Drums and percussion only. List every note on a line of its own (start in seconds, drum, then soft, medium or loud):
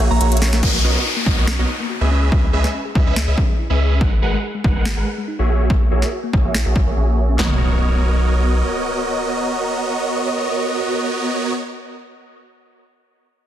0.21 closed hi-hat medium
0.32 closed hi-hat medium
0.37 closed hi-hat medium
0.42 snare medium
0.53 snare medium
0.63 kick loud
0.63 crash medium
1.26 kick medium
1.47 finger snap medium
1.47 snare loud
2.32 kick loud
2.64 snare soft
2.95 kick loud
3.16 finger snap medium
3.16 snare loud
3.38 kick loud
4.01 kick loud
4.64 kick medium
4.85 finger snap medium
4.85 snare loud
5.70 kick loud
6.02 snare soft
6.33 kick loud
6.54 finger snap medium
6.54 snare loud
6.76 kick loud
7.39 snare loud
7.39 clap medium
7.39 floor tom medium